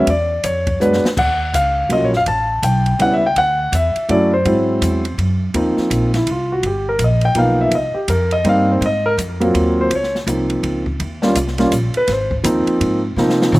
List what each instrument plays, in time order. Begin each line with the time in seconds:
0.07 upright bass E2, grand piano D5, kick, ride
0.44 upright bass F2, grand piano C#5, kick, hi-hat pedal, ride
0.67 kick, ride
0.80 upright bass F#2, grand piano F#3 G#3 B3 D4 B4, hi-hat pedal
0.93 snare
1.03 muted upright bass stroke, snare
1.17 upright bass D#2, grand piano F#5, kick, crash
1.53 upright bass C#2, grand piano F5, kick, hi-hat pedal, ride
1.89 upright bass C2, grand piano F#3 A#3 C#4 F4 D#5, kick, ride
2.02 upright bass A#1, grand piano C#5
2.13 upright bass F#1, grand piano F5, snare
2.26 upright bass A1, grand piano A5, kick, ride
2.62 upright bass B1, grand piano G5, kick, hi-hat pedal, ride
2.86 ride
2.99 upright bass C#2, grand piano G3 B3 C#4 E4 F#5, kick, ride
3.13 grand piano E5
3.26 grand piano G5
3.36 upright bass D2, grand piano F#5, kick, ride
3.72 upright bass E2, grand piano E5, kick, hi-hat pedal, ride
3.96 muted upright bass stroke, ride
4.09 upright bass F#2, grand piano F#3 A3 C#4 E4 D5, kick, ride
4.33 grand piano C5
4.45 upright bass G#2, grand piano F#3 G#3 C4 E4, kick, ride
4.81 upright bass E2, kick, hi-hat pedal, ride
5.05 ride
5.18 upright bass F#2, kick, ride
5.54 upright bass D#2, grand piano F3 A#3 C4 D#4, kick, ride
5.77 muted upright bass stroke, snare
5.90 upright bass A#1, kick, hi-hat pedal, ride
6.14 grand piano E4, snare, ride
6.27 upright bass C2, kick, ride
6.31 grand piano F4
6.52 grand piano F#4
6.63 upright bass G1, grand piano G4, kick, ride
6.89 grand piano A#4
6.99 upright bass A#1, kick, hi-hat pedal, ride
7.04 grand piano D#5
7.21 grand piano G5, ride
7.35 upright bass B1, grand piano F3 A#3 B3 D#4 F5, kick, ride
7.61 grand piano E5
7.71 upright bass C2, kick, ride
7.75 grand piano D#5
7.94 grand piano G4, muted upright bass stroke
8.08 upright bass F2, grand piano A#4, kick, hi-hat pedal, ride
8.31 grand piano D#5, ride
8.44 upright bass G2, grand piano G3 A#3 C4 D#4, kick, ride
8.49 grand piano F5
8.72 grand piano C5
8.81 upright bass G#2, kick, ride
8.86 grand piano D#5
9.06 grand piano A#4
9.17 upright bass F2, kick, hi-hat pedal, ride
9.40 grand piano F#3 A#3 C4 F4, ride
9.54 upright bass D#2, kick, ride
9.81 grand piano C5
9.90 upright bass C#2, kick, ride
9.95 grand piano C#5
10.03 snare
10.15 snare
10.27 upright bass C2, grand piano F3 A#3 C4 D#4, kick, hi-hat pedal, ride
10.50 ride
10.63 upright bass C#2, kick, ride
10.86 kick
11.00 upright bass D#2, kick, ride
11.22 grand piano G3 A#3 C#4 F4, snare
11.35 upright bass C2, kick, hi-hat pedal, ride
11.48 snare
11.58 grand piano G3 A#3 C#4 F4, snare, ride
11.72 upright bass A#1, kick, hi-hat pedal, ride
11.94 grand piano B4, muted upright bass stroke, ride
12.08 upright bass G#1, kick, snare, ride
12.12 grand piano C5
12.31 kick
12.43 upright bass D#2, grand piano F3 A#3 C4 D#4, kick, hi-hat pedal, ride
12.66 muted upright bass stroke, ride
12.80 upright bass G#2, kick, ride
13.16 upright bass C3, grand piano F3 A#3 C4 D#4, snare
13.30 snare
13.42 snare
13.52 upright bass A#2, hi-hat pedal, mid tom